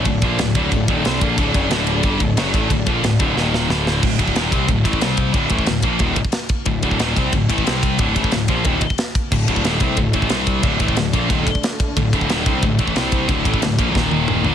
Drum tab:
CC |----------------|----------------|----------------|x---------------|
RD |x-x-x-x-x-x-x-x-|x-x-x-x-x-x-x-x-|x-x-x-x---------|--x-x-x-x-x-x-x-|
SD |----o-------o---|----o-------o---|----o---o-o-o-o-|----o-------o---|
T1 |----------------|----------------|----------------|----------------|
T2 |----------------|----------------|----------------|----------------|
FT |----------------|----------------|----------------|----------------|
BD |o-o---o-o-o---o-|o-o-----o-o---o-|o-o---o---------|o-oo--o-o-oo--o-|

CC |----------------|----------------|----------------|x---------------|
RD |x-x-x-x-x-x-x-x-|x-x-x-x-x-x-x-x-|x-x-x-x-x-x-x-x-|--x-x-x-x-x-x-x-|
SD |----o-------o---|----o-------o---|----o-------o---|----o-------o---|
T1 |----------------|----------------|----------------|----------------|
T2 |----------------|----------------|----------------|----------------|
FT |----------------|----------------|----------------|----------------|
BD |o-oo--o-o-oo--o-|o-oo--o-o-oo--o-|o-oo--o-o-oo--o-|o-oo--o-o-oo--o-|

CC |----------------|----------------|----------------|
RD |x-x-x-x-x-x-x-x-|x-x-x-x-x-x-x-x-|x-x-x-x---------|
SD |----o-------o---|----o-------o---|----o---o-------|
T1 |----------------|----------------|----------o-----|
T2 |----------------|----------------|------------o---|
FT |----------------|----------------|--------------o-|
BD |o-oo--o-o-oo--o-|o-oo--o-o-oo--o-|o-oo--o-o-------|